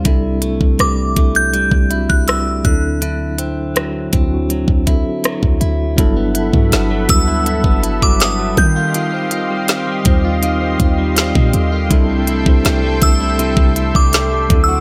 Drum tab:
HH |x-x-x-xxx-x-x-x-|x-x-x-x-x-x-x-x-|x-x-x-x-x-x-x-x-|x-x-x-x-x-x-x-x-|
SD |----r-------r---|----r-------r---|----o-------o---|----o-------o---|
BD |o--o--o--o-o--o-|------o--oo--o--|o--o--o--o-o--o-|------o---o--o--|

HH |x-x-x-x-x-x-x-x-|
SD |----o-------o---|
BD |o--o--o--o-o--o-|